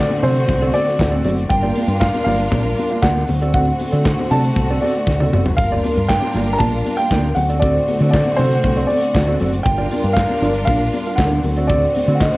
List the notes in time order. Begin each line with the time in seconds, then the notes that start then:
Already playing: D3 A3 C4 F#4 D5
0.11 muted clean electric guitar stroke, muted conga, high conga
0.23 C3 C4 F#4 A4 C5 D5, open hi-hat, low conga
0.36 muted clean electric guitar stroke, closed hi-hat
0.48 C2, muted clean electric guitar stroke, kick, closed hi-hat, high conga, low conga
0.62 C4 F#4 A4 D5
0.74 C4 F#4 A4 D5, open hi-hat, high conga
0.87 muted clean electric guitar stroke, snare, closed hi-hat
0.99 D2, muted clean electric guitar stroke, kick, snare, clap, closed hi-hat, muted conga
1.11 C4 F#4 A4 D5, high conga
1.24 F#1 C4 F#4 A4 D5, open hi-hat, high conga, low conga
1.37 muted clean electric guitar stroke, closed hi-hat
1.49 G1 G3 D4 F4 A#4 G5, muted clean electric guitar stroke, kick, closed hi-hat, muted conga
1.63 A#3 F4 G4 D5
1.75 A#3 F4 G4 D5, open hi-hat, high conga
1.87 G2, muted clean electric guitar stroke, closed hi-hat
2.00 F5, muted clean electric guitar stroke, kick, snare, clap, closed hi-hat, muted conga
2.14 muted clean electric guitar stroke, muted conga, high conga
2.24 G1 A#3 F4 G4 D5 F5, open hi-hat, low conga
2.39 muted clean electric guitar stroke, closed hi-hat
2.52 A#1 A#3 F4 G4 D5, kick, closed hi-hat, muted conga, high conga, low conga
2.65 muted clean electric guitar stroke, muted conga
2.78 muted clean electric guitar stroke, open hi-hat, high conga
2.90 A#3 F4 G4 F5, closed hi-hat
3.02 D2 A#3 F4 G4 D5 F#5, kick, snare, clap, closed hi-hat, muted conga
3.16 muted clean electric guitar stroke, high conga
3.28 D2 D3 A3 C4 F#4, muted clean electric guitar stroke, open hi-hat, high conga, low conga
3.41 C4 F#4 A4 D5, closed hi-hat
3.54 C4 F#4 A4 D5 F#5, kick, closed hi-hat
3.68 muted clean electric guitar stroke, muted conga
3.79 muted clean electric guitar stroke, open hi-hat, high conga
3.92 D3 C4 F#4 A4 D5, closed hi-hat
4.05 kick, snare, clap, closed hi-hat, muted conga
4.19 muted clean electric guitar stroke, muted conga, high conga
4.31 C3 C4 F#4 A4 D5 A5, open hi-hat, low conga
4.44 muted clean electric guitar stroke, closed hi-hat
4.56 C2, muted clean electric guitar stroke, kick, closed hi-hat, muted conga, high conga
4.70 C4 F#4 A4 D5, muted conga
4.81 C4 F#4 A4 D5, open hi-hat, high conga
4.94 muted clean electric guitar stroke, closed hi-hat
5.07 D2, muted clean electric guitar stroke, kick, snare, muted conga
5.20 C4 F#4 A4 D5, high tom, high conga
5.33 F#1 C4 F#4 A4 D5, mid tom, high conga, low conga
5.46 muted clean electric guitar stroke, floor tom
5.57 G1 G3 D4 F4 A#4 F5, muted clean electric guitar stroke, kick, closed hi-hat
5.71 A#3 F4 G4 D5, muted conga
5.84 A#3 F4 G4 D5, open hi-hat, high conga
5.96 G2, muted clean electric guitar stroke, closed hi-hat
6.09 G5, muted clean electric guitar stroke, kick, snare, clap, closed hi-hat
6.22 muted clean electric guitar stroke, muted conga, high conga
6.35 G1 A#3 F4 G4 D5, open hi-hat, low conga
6.48 muted clean electric guitar stroke, closed hi-hat
6.53 A#5
6.58 A#1 A#3 F4 G4 D5 A5, kick, closed hi-hat, muted conga, high conga, low conga
6.73 muted clean electric guitar stroke
6.86 muted clean electric guitar stroke, open hi-hat, high conga
6.97 A#3 F4 G4 F5 G5, closed hi-hat
7.11 D2 A#3 F4 G4 D5, kick, snare, clap, closed hi-hat, muted conga
7.24 muted clean electric guitar stroke, high conga
7.35 D2 D3 A3 C4 F#4 F#5, muted clean electric guitar stroke, open hi-hat, high conga, low conga
7.49 C4 F#4 A4 D5, closed hi-hat
7.60 C4 F#4 A4 D5, kick, closed hi-hat
7.64 D5
7.76 muted clean electric guitar stroke
7.88 muted clean electric guitar stroke, open hi-hat, high conga
8.00 D3 C4 F#4 A4 D5, closed hi-hat
8.11 D5, kick, snare, clap, closed hi-hat, muted conga
8.26 muted clean electric guitar stroke, muted conga, high conga
8.36 C3 C4 F#4 A4 C5, open hi-hat, low conga
8.41 D5
8.51 muted clean electric guitar stroke, closed hi-hat
8.64 C2, muted clean electric guitar stroke, kick, closed hi-hat, high conga, low conga
8.77 C4 F#4 A4 D5
8.87 C4 F#4 A4 D5, open hi-hat
8.92 high conga
9.02 muted clean electric guitar stroke, closed hi-hat
9.15 D2, muted clean electric guitar stroke, kick, snare, clap, closed hi-hat
9.28 C4 F#4 A4 D5, muted conga, high conga
9.40 F#1 C4 F#4 A4 D5, open hi-hat, high conga, low conga
9.53 muted clean electric guitar stroke, closed hi-hat
9.63 G1 G3 D4 F4 A#4 G5, muted clean electric guitar stroke, kick, closed hi-hat
9.68 muted conga
9.78 D4 F4 A#4 D5
9.91 D4 F4 A#4 D5, open hi-hat, high conga
10.04 G2, muted clean electric guitar stroke, closed hi-hat
10.13 F5, muted clean electric guitar stroke, kick, closed hi-hat
10.17 snare, clap
10.29 muted clean electric guitar stroke, muted conga, high conga
10.42 G1 D4 F4 A#4 D5, open hi-hat, low conga
10.55 closed hi-hat
10.65 A#1 D4 F4 A#4 D5 F5, kick, closed hi-hat, high conga, low conga
10.81 muted clean electric guitar stroke, muted conga
10.93 muted clean electric guitar stroke, open hi-hat, high conga
11.06 D4 F4 A#4 F5, closed hi-hat
11.16 D2 D4 F4 A#4 D5 F#5, kick, closed hi-hat, muted conga
11.20 snare, clap
11.32 muted clean electric guitar stroke, muted conga, high conga
11.43 D2 D3 A3 C4 F#4, muted clean electric guitar stroke, open hi-hat, high conga, low conga
11.57 C4 F#4 A4 D5, closed hi-hat
11.67 C4 F#4 A4 D5, kick, closed hi-hat, muted conga
11.84 muted clean electric guitar stroke
11.95 muted clean electric guitar stroke, open hi-hat, high conga
12.08 D3 C4 F#4 A4 D5, closed hi-hat
12.15 F#5
12.21 D#5, kick, snare, clap, closed hi-hat
12.33 muted clean electric guitar stroke